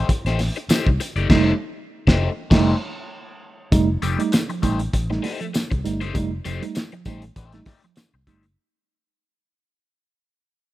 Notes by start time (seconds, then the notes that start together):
0.09 muted fingered electric bass stroke, muted overdriven electric guitar stroke, kick, closed hi-hat, tambourine
0.25 A1 A3 D#4 G4 C5, snare, closed hi-hat
0.39 muted overdriven electric guitar stroke, snare, open hi-hat, tambourine
0.56 muted overdriven electric guitar stroke, closed hi-hat
0.69 A3 D#4 G4 C5, muted fingered electric bass stroke, snare, closed hi-hat, tambourine
0.87 C2, kick
1.00 muted overdriven electric guitar stroke, closed hi-hat, tambourine
1.16 F#1 A3 D#4 G4 D5, closed hi-hat
1.30 F1 G3 A3 D#4 G4 C5, kick, snare, crash
2.07 F1 A3 D#4 G4 C5, kick, snare
2.50 F1 G3 A3 D#4 G4 C5, kick, snare, crash
3.72 F1 G3 A3 D#4, kick, closed hi-hat, tambourine
4.02 F1 F3 A3 D#4 G4 D5, closed hi-hat, tambourine
4.18 G3 A3 D#4, closed hi-hat
4.32 A3 D#4, muted overdriven electric guitar stroke, snare, closed hi-hat, tambourine
4.49 F3, muted overdriven electric guitar stroke, closed hi-hat
4.62 A1 G3 A3 D#4 G4 C5, kick, closed hi-hat, tambourine
4.79 muted overdriven electric guitar stroke, closed hi-hat
4.93 A1, muted overdriven electric guitar stroke, kick, closed hi-hat, tambourine
5.10 G3 A3 D#4, muted overdriven electric guitar stroke, snare
5.23 A3 D#4 G4 C5, snare, open hi-hat
5.41 F3, muted overdriven electric guitar stroke, closed hi-hat
5.54 muted overdriven electric guitar stroke, snare, closed hi-hat, tambourine
5.71 C2, muted overdriven electric guitar stroke, kick, closed hi-hat
5.84 G1 G3 A3 D#4, closed hi-hat, tambourine
6.01 F#1 A3 D#4 G4 C5, closed hi-hat
6.14 F1 G3 A3 D#4, kick, closed hi-hat, tambourine
6.45 F1 F3 A3 D#4 G4 C5, closed hi-hat, tambourine
6.62 G3 A3 D#4, closed hi-hat
6.75 muted overdriven electric guitar stroke, snare, closed hi-hat, tambourine
6.92 F3, muted overdriven electric guitar stroke, closed hi-hat
7.05 A1 G3 A3 D#4 G4 C5, kick, closed hi-hat, tambourine
7.22 muted overdriven electric guitar stroke, closed hi-hat
7.36 A1 A3 D#4 G4 C5, kick, closed hi-hat, tambourine
7.52 G3 A3 D#4, muted overdriven electric guitar stroke, snare, closed hi-hat
7.66 A3 D#4 G4 D5, kick, snare, open hi-hat, tambourine
7.82 F3, muted overdriven electric guitar stroke, closed hi-hat
7.96 muted overdriven electric guitar stroke, snare, closed hi-hat, tambourine
8.14 C2, muted overdriven electric guitar stroke
8.27 G1 G3 A3 D#4 G4 C5, kick, closed hi-hat, tambourine
8.43 F#1, muted overdriven electric guitar stroke, closed hi-hat